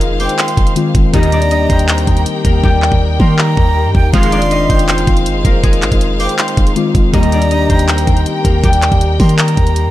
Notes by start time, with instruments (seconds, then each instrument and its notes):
Already playing: 808-style bass F1, synth keys D#3 G#3 C4 F4, harp G#3 A#3 C4 D#4 F4 G#4 A#4 C5 D#5, string section D#4 G#4 C5 F5
0.01 closed hi-hat
0.20 harp C4 C5, flute D6, open hi-hat
0.29 closed hi-hat
0.39 flute C6, clap, closed hi-hat
0.48 closed hi-hat
0.57 808-style bass F1, kick, closed hi-hat
0.67 closed hi-hat
0.76 synth keys D#3 G#3 C4 F4, closed hi-hat
0.95 808-style bass F1, kick, closed hi-hat
1.12 808-style bass D#2, analog polysynth A#2 D#3 G3, synth keys D#3 G3 A#3 G4, string section D#4 G4 A#4 G5, harp D#4 D#5, flute A#5, kick, closed hi-hat
1.23 closed hi-hat
1.32 harp D4 D5, closed hi-hat
1.42 closed hi-hat
1.51 harp D#4 D#5, closed hi-hat
1.70 808-style bass D#2, harp C4 C5, kick, closed hi-hat
1.79 closed hi-hat
1.89 harp C4 C5, clap, closed hi-hat
1.98 closed hi-hat
2.07 808-style bass D#2, kick, closed hi-hat
2.17 closed hi-hat
2.26 closed hi-hat
2.45 808-style bass D#2, harp A#3 A#4, kick, closed hi-hat
2.64 808-style bass D#2, harp G3 G4, kick
2.82 clap
2.92 808-style bass D#2, kick
3.20 808-style bass D#3, harp A#3 A#4, flute C6, kick
3.39 flute A#5, clap
3.57 808-style bass D#2, kick
3.85 808-style bass G2
3.95 808-style bass D#2, flute G5, kick
4.12 808-style bass F1, synth keys D#3 G#3 C4 F4, analog polysynth D#3 F3 G#3, harp F4 F5, string section G#4 C5 F5, flute C6, kick, closed hi-hat
4.23 closed hi-hat
4.32 harp D4 D5, closed hi-hat
4.42 closed hi-hat
4.51 harp D#4 D#5, closed hi-hat
4.70 808-style bass F1, harp C4 C5, kick, closed hi-hat
4.79 closed hi-hat
4.89 harp C4 C5, clap, closed hi-hat
4.98 closed hi-hat
5.07 808-style bass F1, kick, closed hi-hat
5.17 closed hi-hat
5.26 808-style bass G1, closed hi-hat
5.36 808-style bass F1
5.45 808-style bass F1, harp A#3 A#4, kick, closed hi-hat
5.64 808-style bass F1, harp G#3 G#4, kick, closed hi-hat
5.73 closed hi-hat
5.82 808-style bass G#1, clap, closed hi-hat
5.92 808-style bass F1, kick, closed hi-hat
6.01 closed hi-hat
6.20 harp C4 C5, flute D6, open hi-hat
6.29 closed hi-hat
6.39 flute C6, clap, closed hi-hat
6.48 closed hi-hat
6.57 808-style bass F1, kick, closed hi-hat
6.67 closed hi-hat
6.76 synth keys D#3 G#3 C4 F4, closed hi-hat
6.95 808-style bass F1, kick, closed hi-hat
7.12 808-style bass D#2, analog polysynth A#2 D#3 G3, synth keys D#3 G3 A#3 G4, harp D#4 D#5, string section G4 A#4 G5, flute A#5, kick, closed hi-hat
7.23 closed hi-hat
7.32 harp D4 D5, closed hi-hat
7.42 closed hi-hat
7.51 harp D#4 D#5, closed hi-hat
7.70 808-style bass D#2, harp C4 C5, kick, closed hi-hat
7.79 closed hi-hat
7.89 harp C4 C5, clap, closed hi-hat
7.98 closed hi-hat
8.07 808-style bass D#2, kick, closed hi-hat
8.17 closed hi-hat
8.26 closed hi-hat
8.45 808-style bass D#2, harp A#3 A#4, kick, closed hi-hat
8.64 808-style bass D#2, harp G3 G4, kick, closed hi-hat
8.73 closed hi-hat
8.82 clap, closed hi-hat
8.92 808-style bass D#2, kick, closed hi-hat
9.01 closed hi-hat
9.20 808-style bass D#3, harp A#3 A#4, flute C6, kick, open hi-hat
9.29 closed hi-hat
9.39 flute A#5, clap, closed hi-hat
9.48 closed hi-hat
9.57 808-style bass D#2, kick, closed hi-hat
9.67 closed hi-hat
9.76 closed hi-hat
9.85 808-style bass G2